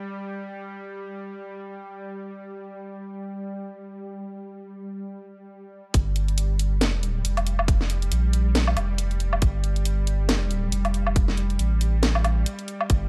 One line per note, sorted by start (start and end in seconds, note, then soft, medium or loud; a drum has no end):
0.00 5.93 G3 medium
5.94 7.23 G1 loud
5.94 13.09 G3 medium
5.94 kick loud
5.94 closed hi-hat medium
6.16 closed hi-hat medium
6.28 closed hi-hat soft
6.38 closed hi-hat medium
6.59 closed hi-hat medium
6.81 snare loud
6.81 closed hi-hat medium
7.03 closed hi-hat medium
7.25 8.10 F1 loud
7.25 closed hi-hat medium
7.37 closed hi-hat soft
7.37 low woodblock soft
7.47 closed hi-hat medium
7.59 low woodblock medium
7.68 kick loud
7.68 closed hi-hat medium
7.81 snare soft
7.90 closed hi-hat medium
8.02 closed hi-hat soft
8.12 8.75 A#1 loud
8.12 closed hi-hat medium
8.33 closed hi-hat medium
8.55 snare loud
8.55 closed hi-hat medium
8.67 low woodblock medium
8.77 9.40 F1 loud
8.77 closed hi-hat medium
8.77 low woodblock medium
8.98 closed hi-hat medium
9.11 closed hi-hat soft
9.20 closed hi-hat medium
9.33 low woodblock medium
9.42 10.71 G1 loud
9.42 kick loud
9.42 closed hi-hat medium
9.64 closed hi-hat medium
9.76 closed hi-hat soft
9.85 closed hi-hat medium
10.07 closed hi-hat medium
10.29 snare loud
10.29 closed hi-hat medium
10.51 closed hi-hat medium
10.72 11.58 F1 loud
10.72 closed hi-hat medium
10.85 closed hi-hat soft
10.85 low woodblock soft
10.94 closed hi-hat medium
11.07 low woodblock medium
11.16 kick loud
11.16 closed hi-hat medium
11.28 snare soft
11.37 closed hi-hat medium
11.50 closed hi-hat soft
11.59 12.45 A1 loud
11.59 closed hi-hat medium
11.81 closed hi-hat medium
12.03 snare loud
12.03 closed hi-hat medium
12.15 low woodblock medium
12.24 closed hi-hat medium
12.24 low woodblock medium
12.46 closed hi-hat medium
12.59 closed hi-hat soft
12.68 closed hi-hat medium
12.81 low woodblock medium
12.90 13.09 G1 loud
12.90 kick loud
12.90 closed hi-hat medium